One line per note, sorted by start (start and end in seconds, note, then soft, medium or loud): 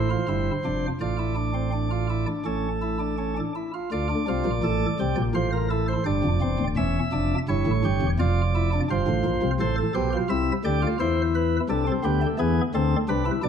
0.00 0.16 A1 medium
0.00 0.16 A2 medium
0.00 0.86 C5 medium
0.10 0.26 F4 medium
0.28 0.51 G1 medium
0.28 0.51 G2 medium
0.28 0.51 E4 medium
0.65 0.87 F1 medium
0.65 0.87 F2 medium
0.65 0.87 D4 medium
1.01 2.26 A1 medium
1.01 2.26 A2 medium
1.01 1.16 F4 medium
1.01 2.26 D5 medium
1.19 1.34 E4 medium
1.36 1.52 D4 soft
1.54 1.70 C4 medium
1.73 1.89 D4 medium
1.91 2.07 F4 medium
2.10 2.26 E4 medium
2.27 2.44 D4 soft
2.45 3.40 A1 medium
2.45 3.39 A2 medium
2.45 2.68 C#4 medium
2.45 3.40 A4 medium
2.82 2.98 E4 medium
3.00 3.16 D4 medium
3.18 3.34 C#4 soft
3.37 3.53 D4 medium
3.55 3.71 E4 soft
3.74 3.89 F4 medium
3.92 4.14 D2 medium
3.92 4.14 D3 medium
3.92 4.08 F4 medium
3.92 5.15 D5 medium
4.10 4.25 D4 medium
4.28 4.44 C2 medium
4.28 4.44 C3 medium
4.28 4.51 F4 medium
4.45 4.61 A#1 medium
4.45 4.61 A#2 medium
4.63 4.86 A1 medium
4.63 4.86 A2 medium
4.63 4.86 A4 medium
5.00 5.15 C2 medium
5.00 5.15 C3 medium
5.00 5.22 G4 medium
5.17 5.33 A#1 medium
5.17 5.33 A#2 medium
5.35 5.96 A1 medium
5.35 5.96 A2 medium
5.35 5.57 F4 medium
5.35 5.50 C5 medium
5.52 5.68 A#4 medium
5.70 5.93 E4 medium
5.70 5.86 A4 medium
5.88 6.04 C5 medium
6.06 6.21 G1 medium
6.06 6.22 G2 medium
6.06 6.28 D4 medium
6.06 6.67 D5 medium
6.24 6.39 F1 medium
6.24 6.39 F2 medium
6.41 6.57 E1 medium
6.41 6.57 E2 medium
6.41 6.64 C4 medium
6.59 6.75 D1 medium
6.59 6.75 D2 medium
6.77 6.99 E1 medium
6.77 6.99 E2 medium
6.77 6.99 C#4 medium
6.77 7.38 E5 medium
7.12 7.35 F1 medium
7.12 7.35 F2 medium
7.12 7.35 D4 medium
7.49 7.64 G1 medium
7.49 7.64 G2 medium
7.49 7.71 E4 medium
7.49 8.10 C#5 medium
7.67 7.82 A1 medium
7.67 7.82 A2 medium
7.84 7.99 G1 medium
7.84 8.00 G2 medium
7.84 8.06 G4 medium
8.02 8.17 E1 medium
8.02 8.17 E2 medium
8.19 8.80 F1 medium
8.19 8.80 F2 medium
8.19 8.41 F4 medium
8.19 8.80 D5 medium
8.55 8.70 E4 medium
8.73 8.88 D4 medium
8.90 9.05 G1 medium
8.90 9.05 G2 medium
8.90 9.51 F4 medium
8.90 9.51 C5 medium
9.08 9.23 A1 medium
9.08 9.23 A2 medium
9.25 9.40 A#1 medium
9.25 9.40 A#2 medium
9.43 9.58 C2 medium
9.43 9.58 C3 medium
9.60 9.82 A1 medium
9.60 9.82 A2 medium
9.60 9.76 A4 medium
9.60 9.75 C5 medium
9.78 9.93 A4 medium
9.95 10.17 B1 medium
9.95 10.17 B2 medium
9.95 10.10 G4 medium
9.95 10.17 C5 medium
10.13 10.28 F4 medium
10.30 10.52 C2 medium
10.30 10.52 C3 medium
10.30 10.52 E4 medium
10.30 10.52 E5 loud
10.65 10.87 D2 medium
10.65 10.87 D3 medium
10.65 10.80 G4 medium
10.65 10.87 D5 medium
10.82 10.98 F4 medium
11.00 11.60 E2 medium
11.00 11.60 E3 medium
11.00 11.60 E4 medium
11.00 11.22 C5 medium
11.35 11.57 B4 medium
11.69 11.91 C2 medium
11.69 11.91 C3 medium
11.69 11.85 D4 medium
11.69 11.91 A4 medium
11.87 12.02 C4 medium
12.04 12.26 D2 medium
12.04 12.26 D3 medium
12.04 12.19 B3 medium
12.04 12.26 G4 medium
12.22 12.37 A3 medium
12.39 12.61 E2 medium
12.39 12.61 E3 medium
12.39 12.61 B3 medium
12.39 12.61 G#4 loud
12.74 12.96 D2 medium
12.74 12.96 D3 medium
12.74 12.96 C4 medium
12.74 12.96 A4 medium
13.09 13.31 C2 medium
13.09 13.31 C3 medium
13.09 13.24 D4 medium
13.09 13.31 B4 loud
13.26 13.41 E4 medium
13.43 13.49 B1 medium
13.43 13.49 B2 medium
13.43 13.49 D4 medium
13.43 13.49 D5 medium